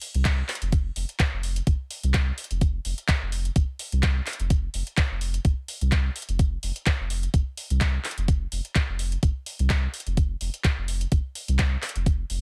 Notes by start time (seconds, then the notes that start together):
0.01 open hi-hat
0.14 C2, closed hi-hat
0.25 kick, clap, closed hi-hat
0.48 clap, open hi-hat
0.55 closed hi-hat
0.62 F1, closed hi-hat
0.72 kick, closed hi-hat
0.96 F1, open hi-hat
1.09 closed hi-hat
1.19 kick, clap, closed hi-hat
1.33 F1
1.43 open hi-hat
1.56 closed hi-hat
1.67 F1, kick, closed hi-hat
1.91 open hi-hat
2.03 C2, closed hi-hat
2.14 kick, clap, closed hi-hat
2.38 open hi-hat
2.44 closed hi-hat
2.51 F1, closed hi-hat
2.61 kick, closed hi-hat
2.85 F1, open hi-hat
2.98 closed hi-hat
3.08 kick, clap, closed hi-hat
3.22 F1
3.32 open hi-hat
3.45 closed hi-hat
3.56 F1, kick, closed hi-hat
3.79 open hi-hat
3.92 C2, closed hi-hat
4.03 kick, clap, closed hi-hat
4.26 clap, open hi-hat
4.33 closed hi-hat
4.40 F1, closed hi-hat
4.50 kick, closed hi-hat
4.74 F1, open hi-hat
4.87 closed hi-hat
4.97 kick, clap, closed hi-hat
5.10 F1
5.21 open hi-hat
5.34 closed hi-hat
5.45 F1, kick, closed hi-hat
5.68 open hi-hat
5.81 C2, closed hi-hat
5.92 kick, clap, closed hi-hat
6.16 open hi-hat
6.22 closed hi-hat
6.29 F1, closed hi-hat
6.39 kick, closed hi-hat
6.63 F1, open hi-hat
6.76 closed hi-hat
6.86 kick, clap, closed hi-hat
6.99 F1
7.10 open hi-hat
7.23 closed hi-hat
7.34 F1, kick, closed hi-hat
7.57 open hi-hat
7.70 C2, closed hi-hat
7.81 kick, clap, closed hi-hat
8.04 clap, open hi-hat
8.11 closed hi-hat
8.17 F1, closed hi-hat
8.28 kick, closed hi-hat
8.52 F1, open hi-hat
8.65 closed hi-hat
8.75 kick, clap, closed hi-hat
8.88 F1
8.99 open hi-hat
9.12 closed hi-hat
9.23 F1, kick, closed hi-hat
9.46 open hi-hat
9.59 C2, closed hi-hat
9.70 kick, clap, closed hi-hat
9.94 open hi-hat
10.00 closed hi-hat
10.07 F1, closed hi-hat
10.17 kick, closed hi-hat
10.41 F1, open hi-hat
10.54 closed hi-hat
10.64 kick, clap, closed hi-hat
10.77 F1
10.88 open hi-hat
11.01 closed hi-hat
11.12 F1, kick, closed hi-hat
11.35 open hi-hat
11.48 C2, closed hi-hat
11.59 kick, clap, closed hi-hat
11.82 clap, open hi-hat
11.89 closed hi-hat
11.96 F1, closed hi-hat
12.06 kick, closed hi-hat
12.30 F1, open hi-hat